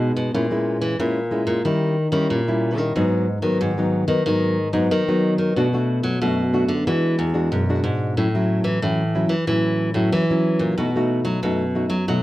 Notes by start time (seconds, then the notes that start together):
Already playing: B2 G#3 D#4 F#4
0.16 B2
0.34 A#2 G#3 C#4 E4
0.51 G#3 C#4 E4
0.82 E3
0.99 A#2 G#3 C#4 E4
1.31 G#3 C#4 E4
1.47 A#2
1.65 D#3 G3 C#4 E4
2.12 D#3 G3 C#4 E4
2.30 A#2
2.48 G3 C#4 E4
2.77 D#3
2.96 G#2 F#3 B3 D#4
3.42 D#3 F#3 B3 D#4
3.61 G#2 D#3
3.78 F#3 B3 D#4
4.08 D#3 F#3 B3 D#4
4.26 G#2 D#3 F#3 B3 D#4
4.73 G#2 F#3 B3 D#4
4.91 D#3
5.08 F#3 B3 D#4
5.38 D#3
5.56 B2 A3 D4 F#4
5.73 A3 D4 F#4
6.03 F#3
6.22 F#2 B2 A3 D4 F#4
6.53 A3 D4 F#4
6.68 D3
6.87 E3 G#3 D4 F#4
7.19 E2
7.34 G#3 D4 F#4
7.52 F#2 B2
7.69 G#3 D4 F#4
7.84 G#2
8.17 A2 F#3 C#4 E4
8.35 F#3 C#4 E4
8.64 E3
8.82 A2 E3 F#3 C#4 E4
9.15 F#3 C#4 E4
9.29 E3
9.47 A2 E3 F#3 C#4 E4
9.94 A2 F#3 C#4 E4
10.13 E3
10.30 F#3 C#4 E4
10.59 A#2
10.78 B2 A3 D#4 F#4
10.96 A3 D#4 F#4
11.25 F#3
11.43 F#2 B2 A3 D#4 F#4
11.75 A3 D#4 F#4
11.90 F#3
12.08 B2 F#3 A3 D#4 F#4